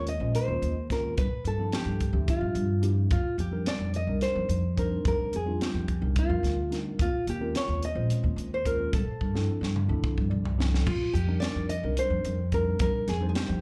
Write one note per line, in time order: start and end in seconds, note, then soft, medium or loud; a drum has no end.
0.00 0.18 D#2 medium
0.07 0.35 D#5 medium
0.07 closed hi-hat soft
0.20 0.33 A#1 medium
0.20 0.74 G#3 medium
0.20 0.75 C#4 medium
0.20 0.75 F4 medium
0.20 0.74 C5 medium
0.20 0.75 D#5 medium
0.35 0.87 C5 medium
0.35 closed hi-hat medium
0.48 0.61 D#2 medium
0.62 1.12 D#2 medium
0.62 closed hi-hat soft
0.89 1.18 G#3 medium
0.89 1.18 C4 medium
0.89 1.18 C#4 medium
0.89 1.18 F4 medium
0.89 1.18 A#4 medium
0.89 kick medium
0.89 snare soft
0.89 closed hi-hat soft
1.18 1.30 G2 medium
1.18 1.47 B4 medium
1.18 kick medium
1.18 closed hi-hat medium
1.31 muted upright bass stroke soft
1.44 1.70 G2 medium
1.44 1.75 A4 medium
1.44 closed hi-hat soft
1.58 2.02 F3 medium
1.58 2.02 C4 medium
1.58 2.02 D4 medium
1.58 2.03 E4 medium
1.58 2.03 A4 medium
1.72 2.26 G4 medium
1.72 snare medium
1.72 closed hi-hat medium
1.85 2.11 G2 medium
2.00 kick medium
2.00 closed hi-hat medium
2.12 2.26 D2 medium
2.12 2.67 F3 medium
2.12 2.68 C4 medium
2.12 2.68 D4 medium
2.12 2.68 G4 medium
2.12 2.68 E5 medium
2.28 2.87 F4 medium
2.28 kick medium
2.28 closed hi-hat medium
2.41 2.54 G2 medium
2.55 3.05 G2 medium
2.55 closed hi-hat medium
2.81 3.10 F3 medium
2.81 3.10 C4 medium
2.81 3.11 D4 medium
2.81 3.11 E4 medium
2.81 3.11 G4 medium
2.81 closed hi-hat medium
3.11 3.23 F2 medium
3.11 3.40 F4 medium
3.11 kick loud
3.11 closed hi-hat medium
3.24 muted upright bass stroke soft
3.38 3.63 F2 medium
3.38 3.68 G4 medium
3.38 closed hi-hat soft
3.51 3.95 G3 medium
3.51 3.95 C4 medium
3.51 3.96 D4 medium
3.51 3.96 D#4 medium
3.51 3.96 A#4 medium
3.66 3.93 D5 medium
3.66 snare medium
3.66 closed hi-hat medium
3.79 4.04 F2 medium
3.94 4.22 D#5 medium
3.94 closed hi-hat soft
4.07 4.20 C2 medium
4.07 4.62 G3 medium
4.07 4.62 C4 medium
4.07 4.62 D4 medium
4.07 4.62 D#4 medium
4.07 4.63 A#4 medium
4.21 4.78 C5 medium
4.21 snare soft
4.21 closed hi-hat medium
4.35 4.48 F2 medium
4.49 4.99 F2 medium
4.49 closed hi-hat soft
4.76 5.31 G3 medium
4.76 5.31 C4 medium
4.76 5.31 D4 medium
4.76 5.31 D#4 medium
4.76 5.07 A#4 medium
4.76 5.32 C5 medium
4.76 kick medium
4.76 closed hi-hat soft
5.05 5.17 F2 medium
5.05 5.35 A#4 medium
5.05 kick loud
5.05 closed hi-hat medium
5.19 muted upright bass stroke soft
5.33 5.58 F2 medium
5.33 5.63 G#4 medium
5.33 closed hi-hat soft
5.45 5.89 G3 medium
5.45 5.89 C4 medium
5.45 5.90 D4 medium
5.45 5.90 D#4 medium
5.45 5.90 F4 medium
5.61 6.14 G4 medium
5.61 snare medium
5.61 closed hi-hat medium
5.74 5.99 F2 medium
5.88 kick medium
5.88 closed hi-hat soft
6.01 6.14 C2 medium
6.01 6.55 G3 medium
6.01 6.56 C4 medium
6.01 6.56 D4 medium
6.01 6.56 D#4 medium
6.01 6.56 A#4 medium
6.16 6.76 F4 medium
6.16 kick medium
6.16 closed hi-hat medium
6.29 6.42 F2 medium
6.43 6.93 D2 medium
6.43 snare soft
6.43 closed hi-hat medium
6.70 6.99 G3 medium
6.70 6.99 C4 medium
6.70 6.99 D4 medium
6.70 6.99 D#4 medium
6.70 7.00 A#4 medium
6.70 snare soft
6.70 closed hi-hat soft
6.99 7.11 D#2 medium
6.99 7.29 F4 medium
6.99 kick medium
6.99 closed hi-hat medium
7.13 muted upright bass stroke soft
7.27 7.52 D#2 medium
7.27 7.54 G4 medium
7.27 closed hi-hat medium
7.40 7.83 G#3 medium
7.40 7.84 C4 medium
7.40 7.84 C#4 medium
7.40 7.84 F4 medium
7.40 7.84 A#4 medium
7.55 7.82 C#5 medium
7.55 snare medium
7.55 closed hi-hat medium
7.68 7.93 D#2 medium
7.83 8.49 D#5 medium
7.83 closed hi-hat medium
7.94 8.08 A#1 medium
7.94 8.49 G#3 medium
7.94 8.49 C4 medium
7.94 8.50 C#4 medium
7.94 8.50 F4 medium
7.94 8.50 C5 medium
8.10 closed hi-hat medium
8.23 8.36 D#2 medium
8.36 8.86 D#2 medium
8.36 closed hi-hat medium
8.54 8.66 C5 medium
8.65 8.93 G#3 medium
8.65 8.93 C4 medium
8.65 8.93 C#4 medium
8.65 8.93 F4 medium
8.65 8.94 A#4 medium
8.65 8.94 C5 medium
8.65 kick medium
8.65 closed hi-hat medium
8.93 9.05 G2 medium
8.93 10.28 A4 medium
8.93 kick medium
8.93 closed hi-hat medium
9.06 muted upright bass stroke soft
9.21 9.45 G2 medium
9.21 kick soft
9.34 9.77 F3 medium
9.34 9.77 C4 medium
9.34 9.77 D4 medium
9.34 9.78 E4 medium
9.34 9.78 A4 medium
9.34 snare soft
9.61 9.86 G2 medium
9.61 snare medium
9.76 mid tom medium
9.88 10.02 D2 medium
9.88 10.43 F3 medium
9.88 10.43 C4 medium
9.88 10.43 D4 medium
9.88 10.43 E4 medium
9.88 10.43 A4 medium
10.04 kick medium
10.17 10.30 G2 medium
10.17 kick medium
10.30 10.80 C2 medium
10.30 10.82 D5 medium
10.45 floor tom medium
10.57 10.86 F3 medium
10.57 10.86 C4 medium
10.57 10.86 D4 medium
10.57 10.86 E4 medium
10.57 10.87 A4 medium
10.57 snare medium
10.74 snare medium
10.86 10.99 F2 medium
10.86 11.12 F4 medium
10.86 kick loud
10.86 crash medium
11.00 muted upright bass stroke soft
11.13 11.39 F2 medium
11.13 11.42 G4 medium
11.13 closed hi-hat soft
11.27 11.70 G3 medium
11.27 11.71 C4 medium
11.27 11.71 D4 medium
11.27 11.71 D#4 medium
11.27 11.71 A#4 medium
11.40 11.69 D5 medium
11.40 snare medium
11.40 closed hi-hat medium
11.55 11.80 F2 medium
11.69 11.98 D#5 medium
11.69 closed hi-hat medium
11.83 11.96 C2 medium
11.83 12.37 G3 medium
11.83 12.37 C4 medium
11.83 12.38 D4 medium
11.83 12.38 D#4 medium
11.83 12.38 A#4 medium
11.97 12.54 C5 medium
11.97 closed hi-hat medium
12.10 12.23 F2 medium
12.25 12.74 F2 medium
12.25 closed hi-hat medium
12.52 13.06 G3 medium
12.52 13.06 C4 medium
12.52 13.07 D4 medium
12.52 13.07 D#4 medium
12.52 13.07 A#4 medium
12.52 12.80 A#4 medium
12.52 kick medium
12.52 closed hi-hat medium
12.79 12.92 F2 medium
12.79 13.09 A#4 medium
12.79 kick loud
12.79 closed hi-hat medium
12.93 muted upright bass stroke soft
13.08 13.33 F2 medium
13.08 13.28 G#4 medium
13.08 snare soft
13.08 closed hi-hat soft
13.20 13.61 G3 medium
13.20 13.61 C4 medium
13.20 13.61 D4 medium
13.20 13.61 D#4 medium
13.20 13.61 C5 medium
13.29 13.35 G#4 medium
13.35 13.61 G4 medium
13.35 snare loud
13.35 closed hi-hat medium
13.49 13.61 F2 medium